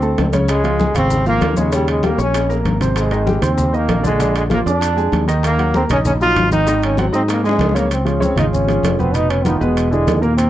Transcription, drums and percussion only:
0.02 high conga soft
0.02 maracas soft
0.18 high bongo soft
0.18 low bongo medium
0.18 high conga medium
0.18 high timbale medium
0.18 low timbale medium
0.18 maracas soft
0.33 high bongo soft
0.33 high conga medium
0.33 high timbale medium
0.33 maracas medium
0.48 high bongo medium
0.48 high timbale medium
0.48 maracas loud
0.64 high bongo soft
0.64 high conga soft
0.64 high timbale medium
0.64 maracas soft
0.79 high bongo medium
0.79 high conga loud
0.79 maracas soft
0.95 high bongo soft
0.95 high conga soft
0.95 low conga medium
0.95 high timbale medium
0.95 maracas medium
1.10 high bongo medium
1.10 high conga soft
1.10 low conga medium
1.10 maracas medium
1.26 high conga soft
1.26 maracas soft
1.41 high bongo soft
1.41 low bongo medium
1.41 high conga medium
1.41 high timbale loud
1.41 low timbale medium
1.41 maracas soft
1.57 high bongo soft
1.57 high conga medium
1.57 maracas medium
1.72 high bongo medium
1.72 high timbale medium
1.72 maracas loud
1.88 high bongo soft
1.88 high conga soft
1.88 high timbale medium
1.88 maracas soft
2.03 high bongo medium
2.03 high conga medium
2.03 high timbale medium
2.03 maracas soft
2.19 high bongo medium
2.19 maracas medium
2.34 high bongo medium
2.34 high conga soft
2.34 high timbale loud
2.34 maracas medium
2.50 high bongo medium
2.50 high conga soft
2.50 maracas soft
2.65 low bongo medium
2.65 high conga medium
2.65 high timbale medium
2.65 maracas soft
2.81 low bongo medium
2.81 high conga medium
2.81 high timbale medium
2.81 maracas medium
2.96 high bongo medium
2.96 high conga soft
2.96 high timbale loud
2.96 maracas medium
3.11 high bongo soft
3.11 high timbale medium
3.11 maracas soft
3.27 high bongo medium
3.27 high conga medium
3.27 maracas soft
3.42 high bongo soft
3.42 high conga soft
3.42 low conga medium
3.42 high timbale medium
3.42 maracas medium
3.58 high bongo medium
3.58 high conga soft
3.58 low conga medium
3.58 maracas medium
3.74 high conga soft
3.74 maracas soft
3.89 high bongo soft
3.89 low bongo medium
3.89 high conga medium
3.89 high timbale medium
3.89 low timbale medium
3.89 maracas soft
4.04 high bongo soft
4.04 high conga medium
4.04 maracas medium
4.20 high bongo medium
4.20 high conga soft
4.20 high timbale medium
4.20 maracas medium
4.35 high bongo soft
4.35 high conga soft
4.35 high timbale medium
4.35 maracas soft
4.50 high bongo medium
4.50 high conga loud
4.50 high timbale medium
4.50 maracas soft
4.66 high bongo soft
4.66 maracas medium
4.81 high bongo medium
4.81 high conga soft
4.81 high timbale medium
4.81 maracas medium
4.97 high conga soft
4.97 maracas soft
5.12 high bongo soft
5.12 low bongo medium
5.12 high conga medium
5.12 high timbale medium
5.12 maracas soft
5.27 high bongo soft
5.27 high timbale medium
5.27 maracas medium
5.43 high bongo medium
5.43 high conga soft
5.43 high timbale medium
5.43 maracas medium
5.58 high bongo soft
5.58 high conga soft
5.58 high timbale medium
5.58 maracas soft
5.74 high bongo medium
5.74 high conga medium
5.74 maracas soft
5.89 high bongo soft
5.89 high conga soft
5.89 low conga medium
5.89 high timbale medium
5.89 maracas medium
6.05 high bongo medium
6.05 high conga soft
6.05 low conga medium
6.05 maracas medium
6.21 high conga soft
6.21 maracas soft
6.36 high bongo soft
6.36 low bongo medium
6.36 high conga medium
6.36 high timbale medium
6.36 maracas soft
6.51 high bongo soft
6.51 high conga medium
6.51 maracas medium
6.67 high bongo medium
6.67 high timbale medium
6.67 maracas medium
6.82 high bongo soft
6.82 high conga soft
6.82 high timbale medium
6.82 maracas soft
6.97 high bongo medium
6.97 high conga loud
6.97 high timbale medium
6.97 maracas soft
7.14 high bongo soft
7.14 maracas medium
7.28 high bongo loud
7.28 high conga soft
7.28 high timbale loud
7.28 maracas loud
7.44 high conga soft
7.44 maracas soft
7.49 low bongo loud
7.59 low bongo loud
7.59 high conga medium
7.59 high timbale medium
7.59 low timbale medium
7.59 maracas soft
7.69 low bongo medium
7.76 low bongo medium
7.76 high timbale medium
7.76 maracas medium
7.90 high conga soft
7.90 high timbale medium
7.90 maracas medium
8.06 high conga soft
8.06 high timbale medium
8.06 maracas soft
8.22 high conga medium
8.22 low timbale medium
8.22 maracas medium
8.38 high conga soft
8.38 low conga medium
8.38 high timbale loud
8.38 maracas soft
8.53 high conga soft
8.53 low conga medium
8.53 maracas medium
8.68 high conga soft
8.68 high timbale medium
8.68 maracas soft
8.84 high conga medium
8.84 high timbale medium
8.84 low timbale medium
8.84 maracas medium
8.99 high conga medium
8.99 maracas soft
9.14 high conga soft
9.14 high timbale medium
9.14 maracas medium
9.29 high conga soft
9.29 high timbale medium
9.29 maracas soft
9.45 high conga medium
9.45 high timbale medium
9.45 low timbale medium
9.45 maracas medium
9.61 high conga soft
9.61 maracas soft
9.77 high conga soft
9.77 high timbale medium
9.77 maracas medium
9.92 high conga soft
9.92 maracas soft
10.08 high conga medium
10.08 high timbale medium
10.08 low timbale medium
10.08 maracas medium
10.23 maracas soft
10.38 high conga soft
10.38 high timbale medium
10.38 maracas medium

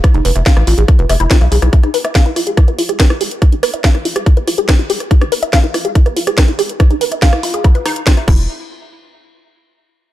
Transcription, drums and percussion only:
0.04 kick loud
0.04 cross-stick medium
0.04 closed hi-hat medium
0.14 closed hi-hat soft
0.25 open hi-hat loud
0.36 cross-stick soft
0.36 closed hi-hat soft
0.46 kick loud
0.46 snare loud
0.46 closed hi-hat soft
0.57 cross-stick medium
0.57 closed hi-hat soft
0.67 open hi-hat medium
0.78 closed hi-hat medium
0.88 kick loud
0.88 cross-stick soft
0.88 closed hi-hat medium
0.99 closed hi-hat soft
1.09 cross-stick medium
1.09 open hi-hat loud
1.20 closed hi-hat medium
1.31 kick loud
1.31 snare loud
1.31 closed hi-hat medium
1.41 cross-stick soft
1.41 closed hi-hat soft
1.52 open hi-hat medium
1.62 cross-stick medium
1.62 closed hi-hat medium
1.73 kick loud
1.73 closed hi-hat medium
1.83 cross-stick soft
1.83 closed hi-hat soft
1.94 open hi-hat loud
2.05 cross-stick medium
2.05 closed hi-hat soft
2.15 kick loud
2.15 snare loud
2.15 closed hi-hat medium
2.26 closed hi-hat soft
2.36 cross-stick soft
2.36 open hi-hat medium
2.47 closed hi-hat medium
2.57 kick loud
2.57 cross-stick medium
2.57 closed hi-hat medium
2.68 closed hi-hat soft
2.79 open hi-hat loud
2.89 cross-stick soft
2.89 closed hi-hat soft
3.00 kick loud
3.00 snare loud
3.00 closed hi-hat soft
3.10 cross-stick medium
3.10 closed hi-hat soft
3.21 open hi-hat medium
3.31 closed hi-hat medium
3.42 kick loud
3.42 cross-stick soft
3.42 closed hi-hat medium
3.52 closed hi-hat soft
3.63 cross-stick medium
3.63 open hi-hat loud
3.74 closed hi-hat medium
3.84 kick loud
3.84 snare loud
3.84 closed hi-hat medium
3.95 cross-stick soft
3.95 closed hi-hat soft
4.05 open hi-hat medium
4.16 cross-stick medium
4.16 closed hi-hat medium
4.26 kick loud
4.26 closed hi-hat medium
4.37 closed hi-hat soft
4.48 cross-stick soft
4.48 open hi-hat loud
4.58 closed hi-hat medium
4.69 kick loud
4.69 cross-stick medium
4.69 snare loud
4.69 closed hi-hat medium
4.79 closed hi-hat soft
4.90 open hi-hat medium
5.00 cross-stick soft
5.00 closed hi-hat medium
5.11 kick loud
5.11 closed hi-hat medium
5.21 cross-stick medium
5.21 closed hi-hat soft
5.32 open hi-hat loud
5.43 closed hi-hat medium
5.53 kick loud
5.53 cross-stick soft
5.53 snare loud
5.53 closed hi-hat medium
5.64 closed hi-hat soft
5.74 cross-stick medium
5.74 open hi-hat medium
5.85 closed hi-hat medium
5.95 kick loud
5.95 closed hi-hat medium
6.06 cross-stick soft
6.06 closed hi-hat soft
6.17 open hi-hat loud
6.27 cross-stick medium
6.27 closed hi-hat medium
6.38 kick loud
6.38 snare loud
6.38 closed hi-hat medium
6.48 closed hi-hat soft
6.59 cross-stick soft
6.59 open hi-hat medium
6.69 closed hi-hat medium
6.80 kick loud
6.80 cross-stick medium
6.80 closed hi-hat medium
6.91 closed hi-hat soft
7.01 open hi-hat loud
7.12 cross-stick soft
7.12 closed hi-hat medium
7.22 kick loud
7.22 snare loud
7.22 closed hi-hat medium
7.33 cross-stick medium
7.33 closed hi-hat soft
7.43 open hi-hat medium
7.54 closed hi-hat medium
7.64 kick loud
7.64 cross-stick soft
7.64 closed hi-hat medium
7.75 closed hi-hat soft
7.86 cross-stick medium
7.86 open hi-hat loud
7.96 closed hi-hat medium
8.07 kick loud
8.07 snare loud
8.07 closed hi-hat medium
8.17 cross-stick soft
8.17 closed hi-hat soft
8.28 kick loud
8.28 crash medium

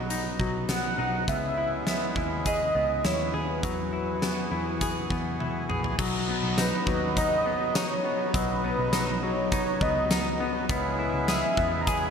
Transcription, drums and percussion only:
0.10 closed hi-hat medium
0.40 kick medium
0.69 snare medium
0.69 closed hi-hat medium
1.28 kick medium
1.28 closed hi-hat medium
1.87 snare loud
1.87 closed hi-hat soft
2.16 kick medium
2.46 kick medium
2.46 closed hi-hat medium
3.04 snare loud
3.04 closed hi-hat medium
3.63 kick loud
3.63 closed hi-hat soft
4.22 snare medium
4.22 closed hi-hat medium
4.81 kick medium
4.81 closed hi-hat medium
5.10 kick medium
5.40 high tom soft
5.70 mid tom medium
5.84 floor tom medium
5.99 kick loud
5.99 crash medium
6.58 snare loud
6.58 closed hi-hat medium
6.58 tambourine medium
6.87 kick medium
7.17 kick medium
7.17 closed hi-hat medium
7.75 snare loud
7.75 closed hi-hat medium
7.75 tambourine medium
8.34 kick loud
8.34 closed hi-hat medium
8.93 snare loud
8.93 closed hi-hat medium
8.93 tambourine medium
9.52 kick medium
9.52 closed hi-hat medium
9.81 kick medium
10.11 snare loud
10.11 closed hi-hat medium
10.11 tambourine medium
10.69 kick loud
10.69 closed hi-hat medium
11.28 snare loud
11.28 closed hi-hat medium
11.28 tambourine medium
11.57 kick medium
11.87 kick medium
11.87 closed hi-hat medium

